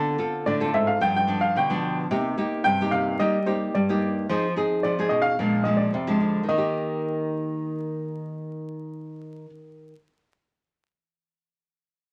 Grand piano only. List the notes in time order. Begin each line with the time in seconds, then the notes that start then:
0.46 D5
0.74 E5
0.87 F5
1.01 G5
1.16 G5
1.41 F5
1.57 G5
2.64 G5
2.91 F5
3.19 D#5
3.46 C5
3.75 D5
4.83 D5
5.09 D#5
5.22 F5
5.64 D#5
5.77 D5
6.48 D#5